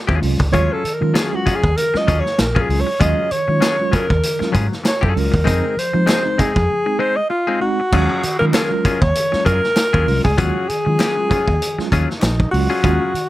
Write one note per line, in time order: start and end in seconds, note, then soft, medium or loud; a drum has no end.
0.07 0.19 D#2 medium
0.07 0.20 F#3 medium
0.07 0.20 C#4 medium
0.07 0.21 F4 medium
0.07 0.20 G#4 medium
0.07 kick medium
0.21 0.35 C2 medium
0.21 0.38 F#3 medium
0.21 0.39 G#3 medium
0.21 0.39 C#4 medium
0.21 0.39 F4 loud
0.21 muted clean electric guitar stroke soft
0.21 open hi-hat medium
0.40 0.50 C#2 medium
0.40 muted clean electric guitar stroke soft
0.40 kick medium
0.52 0.66 D#2 loud
0.52 0.69 F#3 medium
0.52 0.82 F#3 medium
0.52 0.69 G#3 medium
0.52 0.69 C#4 medium
0.52 0.82 C#4 loud
0.52 0.70 F4 loud
0.52 0.82 F4 medium
0.52 0.83 G#4 medium
0.52 0.74 C#5 loud
0.52 kick loud
0.52 closed hi-hat medium
0.73 0.95 A4 loud
0.83 1.00 D#3 medium
0.83 muted fingered electric bass stroke soft
0.83 closed hi-hat medium
0.94 1.16 A#4 medium
1.01 1.12 D#3 loud
1.01 1.14 F#3 medium
1.01 1.14 G#3 medium
1.01 1.14 C#4 medium
1.01 1.14 F4 loud
1.01 muted clean electric guitar stroke soft
1.14 1.32 D#3 medium
1.14 1.35 F#3 medium
1.14 1.32 C#4 medium
1.14 1.32 F4 medium
1.14 1.37 G#4 medium
1.14 1.31 G#4 loud
1.14 snare loud
1.14 clap loud
1.14 closed hi-hat medium
1.32 1.46 F#3 medium
1.32 1.46 G#3 medium
1.32 1.46 C#4 medium
1.32 1.46 F4 medium
1.32 1.57 F#4 medium
1.32 muted clean electric guitar stroke soft
1.46 1.62 F#3 medium
1.46 1.62 C#4 medium
1.46 1.53 C#4 soft
1.46 1.62 F4 medium
1.46 1.53 F4 soft
1.46 1.61 G#4 medium
1.46 muted fingered electric bass stroke medium
1.46 kick medium
1.46 closed hi-hat medium
1.55 1.78 G#4 loud
1.63 1.73 D#2 medium
1.63 muted clean electric guitar stroke medium
1.63 kick medium
1.77 1.94 D#3 medium
1.77 1.99 A#4 loud
1.77 closed hi-hat loud
1.94 2.07 F#3 medium
1.94 2.08 G#3 medium
1.94 2.08 C#4 medium
1.94 2.08 F4 medium
1.94 2.21 D#5 loud
1.94 muted clean electric guitar stroke medium
1.94 muted fingered electric bass stroke soft
1.94 snare soft
2.07 2.21 D#2 loud
2.07 2.28 F#3 medium
2.07 2.24 C#4 medium
2.07 2.16 C#4 soft
2.07 2.24 F4 loud
2.07 2.15 F4 soft
2.07 2.24 G#4 medium
2.07 kick medium
2.07 closed hi-hat medium
2.20 2.41 C#5 loud
2.25 muted clean electric guitar stroke soft
2.25 snare soft
2.38 2.61 A#1 medium
2.38 2.62 A#4 medium
2.38 muted clean electric guitar stroke soft
2.38 snare loud
2.38 clap medium
2.38 closed hi-hat medium
2.55 2.68 F#3 medium
2.55 2.69 C#4 medium
2.55 2.68 F4 medium
2.55 2.69 G#4 medium
2.55 kick medium
2.61 2.82 G#4 medium
2.69 2.82 C#2 medium
2.69 2.86 F#3 medium
2.69 2.86 G#3 medium
2.69 2.87 C#4 medium
2.69 2.87 F4 loud
2.69 muted clean electric guitar stroke soft
2.69 open hi-hat medium
2.80 3.02 C#5 loud
2.87 muted clean electric guitar stroke medium
3.00 3.13 D#2 medium
3.00 3.29 F#3 medium
3.00 3.17 F#3 medium
3.00 3.17 G#3 medium
3.00 3.29 C#4 medium
3.00 3.18 C#4 medium
3.00 3.29 F4 medium
3.00 3.18 F4 loud
3.00 3.29 G#4 loud
3.00 3.33 D#5 loud
3.00 kick loud
3.00 closed hi-hat medium
3.31 3.48 D#3 medium
3.31 3.96 C#5 loud
3.31 muted fingered electric bass stroke medium
3.31 closed hi-hat medium
3.48 3.58 D#3 medium
3.48 3.62 F#3 medium
3.48 3.62 G#3 medium
3.48 3.62 C#4 medium
3.48 3.62 F4 medium
3.48 muted clean electric guitar stroke medium
3.60 3.80 D#3 medium
3.60 3.82 F#3 medium
3.60 3.78 C#4 medium
3.60 3.77 F4 medium
3.60 3.76 G#4 loud
3.60 snare loud
3.60 clap loud
3.60 closed hi-hat medium
3.78 3.93 F#3 medium
3.78 3.93 G#3 medium
3.78 3.93 C#4 medium
3.78 3.93 F4 loud
3.78 muted clean electric guitar stroke soft
3.91 4.09 F#3 medium
3.91 4.08 C#4 medium
3.91 4.01 C#4 soft
3.91 4.08 F4 medium
3.91 4.00 F4 medium
3.91 4.07 G#4 medium
3.91 4.55 A#4 medium
3.91 muted fingered electric bass stroke medium
3.91 kick loud
3.91 closed hi-hat medium
4.08 4.20 D#2 medium
4.08 muted clean electric guitar stroke medium
4.08 kick medium
4.23 4.41 D#3 medium
4.23 closed hi-hat loud
4.39 4.54 F#3 medium
4.39 4.55 G#3 medium
4.39 4.54 C#4 medium
4.39 4.54 F4 medium
4.39 muted clean electric guitar stroke soft
4.39 muted fingered electric bass stroke medium
4.39 snare soft
4.52 4.67 G#2 medium
4.52 4.74 F#3 loud
4.52 4.68 C#4 medium
4.52 4.62 C#4 soft
4.52 4.68 F4 medium
4.52 4.62 F4 soft
4.52 4.67 G#4 loud
4.52 kick loud
4.52 closed hi-hat medium
4.68 muted clean electric guitar stroke medium
4.72 snare soft
4.84 muted clean electric guitar stroke soft
4.84 snare loud
4.84 clap loud
4.84 closed hi-hat medium
4.88 5.06 C#5 medium
5.01 5.13 F#2 loud
5.01 5.13 F#3 medium
5.01 5.14 C#4 medium
5.01 5.14 F4 medium
5.01 5.15 G#4 loud
5.01 5.20 A4 medium
5.01 kick medium
5.14 5.29 C#2 medium
5.14 5.33 F#3 medium
5.14 5.33 G#3 medium
5.14 5.33 C#4 medium
5.14 5.33 F4 loud
5.14 5.80 A#4 medium
5.14 muted clean electric guitar stroke soft
5.14 open hi-hat medium
5.32 5.48 D#2 medium
5.32 muted clean electric guitar stroke soft
5.32 kick medium
5.44 5.60 F2 loud
5.44 5.74 G#3 medium
5.44 5.63 G#3 medium
5.44 5.74 C4 loud
5.44 5.64 C4 medium
5.44 5.75 D#4 loud
5.44 5.64 D#4 loud
5.44 5.75 G#4 loud
5.44 kick loud
5.44 closed hi-hat medium
5.77 5.94 F3 medium
5.77 6.41 C5 loud
5.77 muted fingered electric bass stroke soft
5.77 closed hi-hat medium
5.93 6.04 F3 loud
5.93 6.08 G#3 medium
5.93 6.08 C4 medium
5.93 6.08 D#4 loud
5.93 muted clean electric guitar stroke soft
6.06 6.25 F3 medium
6.06 6.28 G#3 medium
6.06 6.24 C4 medium
6.06 6.23 D#4 loud
6.06 6.23 G#4 medium
6.06 snare loud
6.06 clap loud
6.06 closed hi-hat medium
6.24 6.39 G#3 loud
6.24 6.38 C4 medium
6.24 6.38 D#4 loud
6.24 muted clean electric guitar stroke soft
6.38 6.55 G#3 medium
6.38 6.54 C4 medium
6.38 6.46 C4 soft
6.38 6.54 D#4 medium
6.38 6.46 D#4 soft
6.38 6.54 G#4 medium
6.38 7.01 G#4 loud
6.38 muted fingered electric bass stroke medium
6.38 kick medium
6.38 closed hi-hat medium
6.55 6.66 F2 medium
6.55 muted clean electric guitar stroke soft
6.55 kick loud
6.70 6.87 F3 soft
6.86 7.00 G#3 medium
6.86 6.99 C4 medium
6.86 7.00 D#4 medium
6.86 muted clean electric guitar stroke medium
6.99 7.20 G#3 medium
6.99 7.17 C4 medium
6.99 7.08 C4 soft
6.99 7.17 D#4 loud
6.99 7.08 D#4 soft
6.99 7.17 G#4 medium
6.99 7.18 C5 loud
7.16 7.29 D#5 loud
7.16 muted clean electric guitar stroke soft
7.30 7.59 F4 medium
7.30 muted clean electric guitar stroke soft
7.47 7.60 G#3 medium
7.47 7.60 C4 medium
7.47 7.61 D#4 medium
7.47 7.61 G#4 medium
7.61 7.78 G#3 loud
7.61 7.78 C4 medium
7.61 7.78 D#4 loud
7.61 8.36 F#4 loud
7.61 muted clean electric guitar stroke soft
7.80 muted clean electric guitar stroke soft
7.92 8.05 D#2 loud
7.92 8.09 F#3 medium
7.92 8.21 F#3 medium
7.92 8.09 G#3 medium
7.92 8.09 C#4 medium
7.92 8.22 C#4 loud
7.92 8.09 F4 loud
7.92 8.22 F4 medium
7.92 8.22 G#4 medium
7.92 kick loud
7.92 crash medium
8.22 8.40 D#3 medium
8.22 muted fingered electric bass stroke soft
8.22 closed hi-hat medium
8.39 8.51 D#3 medium
8.39 8.53 F#3 medium
8.39 8.53 G#3 medium
8.39 8.53 C#4 medium
8.39 8.53 F4 loud
8.39 8.46 A#4 loud
8.39 muted clean electric guitar stroke soft
8.53 8.70 D#3 medium
8.53 8.74 F#3 medium
8.53 8.72 C#4 medium
8.53 8.71 F4 medium
8.53 8.71 G#4 loud
8.53 9.03 A#4 loud
8.53 snare loud
8.53 clap loud
8.53 closed hi-hat medium
8.71 8.84 F#3 medium
8.71 8.84 G#3 medium
8.71 8.83 C#4 medium
8.71 8.84 F4 loud
8.71 muted clean electric guitar stroke soft
8.85 9.01 F#3 medium
8.85 8.92 C#4 soft
8.85 9.01 C#4 medium
8.85 8.92 F4 soft
8.85 9.02 F4 medium
8.85 9.01 G#4 medium
8.85 muted fingered electric bass stroke soft
8.85 kick medium
8.85 closed hi-hat medium
9.01 9.12 D#2 medium
9.01 9.45 C#5 loud
9.01 muted clean electric guitar stroke medium
9.01 kick loud
9.15 9.32 D#3 medium
9.15 closed hi-hat loud
9.32 9.46 F#3 medium
9.32 9.46 G#3 medium
9.32 9.45 C#4 medium
9.32 9.45 F4 medium
9.32 muted clean electric guitar stroke soft
9.32 muted fingered electric bass stroke medium
9.32 snare soft
9.45 9.59 F#2 loud
9.45 9.66 F#3 loud
9.45 9.62 C#4 medium
9.45 9.62 F4 loud
9.45 9.61 G#4 medium
9.45 10.21 A#4 loud
9.45 kick medium
9.45 closed hi-hat medium
9.62 muted clean electric guitar stroke soft
9.62 snare soft
9.76 muted clean electric guitar stroke soft
9.76 snare loud
9.76 clap loud
9.76 closed hi-hat loud
9.93 10.04 D#2 medium
9.93 10.06 F#3 medium
9.93 10.06 C#4 medium
9.93 10.07 F4 medium
9.93 10.07 G#4 medium
9.93 kick medium
10.07 10.20 C2 medium
10.07 10.24 F#3 medium
10.07 10.24 G#3 medium
10.07 10.24 C#4 medium
10.07 10.24 F4 loud
10.07 muted clean electric guitar stroke soft
10.07 open hi-hat medium
10.24 10.35 C#2 medium
10.24 10.40 G#4 loud
10.24 muted clean electric guitar stroke soft
10.24 kick medium
10.37 10.51 D#2 loud
10.37 10.54 F#3 medium
10.37 10.67 F#3 loud
10.37 10.55 G#3 medium
10.37 10.55 C#4 medium
10.37 10.67 C#4 loud
10.37 10.55 F4 loud
10.37 10.67 F4 loud
10.37 10.70 F#4 loud
10.37 10.67 G#4 loud
10.37 kick loud
10.37 closed hi-hat medium
10.69 10.86 D#3 medium
10.69 11.96 G#4 loud
10.69 muted fingered electric bass stroke soft
10.69 closed hi-hat medium
10.85 10.96 D#3 medium
10.85 10.99 F#3 medium
10.85 11.00 G#3 medium
10.85 11.00 C#4 medium
10.85 11.00 F4 medium
10.85 muted clean electric guitar stroke soft
10.99 11.16 D#3 medium
10.99 11.21 F#3 medium
10.99 11.17 C#4 medium
10.99 11.16 F4 medium
10.99 11.16 G#4 medium
10.99 snare loud
10.99 clap loud
10.99 closed hi-hat medium
11.17 11.30 F#3 medium
11.17 11.30 G#3 medium
11.17 11.30 C#4 medium
11.17 11.30 F4 loud
11.17 muted clean electric guitar stroke soft
11.30 11.46 F#3 medium
11.30 11.47 C#4 medium
11.30 11.38 C#4 soft
11.30 11.38 F4 soft
11.30 11.47 F4 medium
11.30 11.47 G#4 medium
11.30 muted fingered electric bass stroke soft
11.30 kick medium
11.30 closed hi-hat medium
11.48 11.58 D#2 loud
11.48 muted clean electric guitar stroke soft
11.48 kick medium
11.61 11.78 D#3 medium
11.61 closed hi-hat loud
11.78 11.91 F#3 medium
11.78 11.91 G#3 medium
11.78 11.91 C#4 medium
11.78 11.91 F4 medium
11.78 muted fingered electric bass stroke medium
11.78 muted clean electric guitar stroke soft
11.78 snare soft
11.92 12.05 D#2 loud
11.92 12.12 F#3 medium
11.92 11.99 C#4 soft
11.92 12.10 C#4 medium
11.92 11.99 F4 soft
11.92 12.09 F4 loud
11.92 12.09 G#4 loud
11.92 kick medium
11.92 closed hi-hat medium
12.10 muted clean electric guitar stroke soft
12.10 snare soft
12.19 12.45 A#1 loud
12.19 12.49 D#4 medium
12.19 muted clean electric guitar stroke soft
12.19 snare loud
12.19 clap loud
12.19 closed hi-hat medium
12.39 muted clean electric guitar stroke soft
12.39 kick medium
12.51 12.66 C#2 medium
12.51 12.70 F#3 loud
12.51 12.70 G#3 medium
12.51 12.70 C#4 medium
12.51 12.70 F4 loud
12.51 13.29 F#4 loud
12.51 open hi-hat medium
12.70 12.81 F#3 medium
12.70 12.81 C#4 medium
12.70 12.82 F4 medium
12.70 12.82 G#4 medium
12.82 12.97 D#2 loud
12.82 13.12 F#3 medium
12.82 13.01 F#3 medium
12.82 13.01 G#3 medium
12.82 13.12 C#4 medium
12.82 13.01 C#4 medium
12.82 13.12 F4 medium
12.82 13.01 F4 loud
12.82 13.12 G#4 medium
12.82 kick loud
12.82 closed hi-hat medium
13.14 13.29 D#3 medium
13.14 muted fingered electric bass stroke soft
13.14 closed hi-hat medium